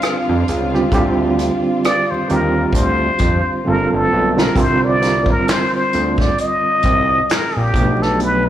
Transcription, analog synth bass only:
0.29 0.44 F2 medium
0.49 0.85 C#2 medium
0.93 1.51 D2 loud
2.11 2.18 D#2 soft
2.31 2.67 D#2 medium
2.74 3.11 D2 loud
3.21 3.41 F2 medium
3.67 3.87 G1 medium
3.93 4.08 G1 medium
4.13 4.49 B1 medium
4.57 5.30 C2 loud
5.94 6.30 D2 medium
6.85 7.21 C2 loud
7.57 7.71 A#1 medium
7.75 8.49 B1 loud

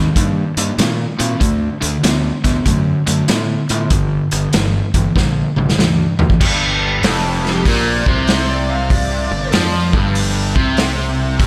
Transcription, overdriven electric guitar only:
0.00 0.14 D#3 medium
0.00 0.14 C4 medium
0.17 0.53 D#3 medium
0.17 0.53 A#3 medium
0.57 0.77 D#3 medium
0.57 0.77 A#3 medium
0.79 1.16 D#3 medium
0.79 1.16 C4 medium
1.20 1.39 D#3 medium
1.20 1.39 C4 medium
1.41 1.78 D3 medium
1.41 1.78 A3 medium
1.82 2.01 D3 medium
1.82 2.02 A3 medium
2.04 2.41 D3 medium
2.04 2.41 B3 medium
2.44 2.64 D3 medium
2.44 2.64 B3 medium
2.66 3.03 D3 medium
2.66 3.03 A3 medium
3.07 3.26 D3 medium
3.07 3.27 A3 medium
3.28 3.65 D3 medium
3.28 3.66 B3 medium
3.70 3.89 D3 medium
3.70 3.89 B3 medium
3.92 4.28 G2 medium
3.92 4.28 D3 medium
4.32 4.51 G2 medium
4.32 4.52 D3 medium
4.54 4.91 G2 medium
4.54 4.91 E3 medium
4.95 5.14 G2 medium
4.95 5.14 E3 medium
5.17 5.53 G2 medium
5.17 5.53 D3 medium
5.58 5.77 G2 medium
5.58 5.77 D3 medium
5.79 6.15 G2 medium
5.79 6.16 E3 medium
6.19 6.39 G2 medium
6.19 6.39 E3 medium
6.41 7.03 G2 medium
7.04 7.65 F2 loud
7.66 8.06 A#2 loud
8.07 9.31 C3 medium
9.32 9.49 G2 medium
9.54 9.93 F3 loud
9.94 10.55 G2 medium
10.56 11.39 C3 medium
11.39 11.47 G2 medium

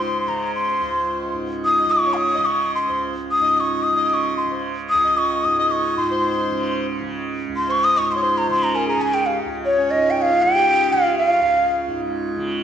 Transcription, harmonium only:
0.00 0.68 C5 medium
0.69 1.48 C5 soft
1.79 2.00 D#5 medium
2.02 2.07 D#5 soft
2.07 2.35 C#5 medium
2.34 2.91 D#5 medium
2.88 3.14 C5 soft
3.42 3.93 D#5 medium
3.96 4.52 D#5 medium
4.51 4.76 C5 soft
5.04 5.57 D#5 medium
5.59 6.08 D#5 medium
6.11 6.86 C5 medium
7.69 7.96 C5 medium
7.96 8.15 D#5 medium
8.16 8.22 C#5 medium
8.22 8.75 C5 medium
8.74 8.87 A#4 medium
8.87 9.12 G#4 medium
9.14 9.25 G#4 medium
9.27 9.50 G4 soft
9.77 10.30 C#4 medium
10.28 10.54 F4 medium
10.55 11.06 G4 medium
11.05 11.28 F4 medium
11.29 12.01 F4 medium

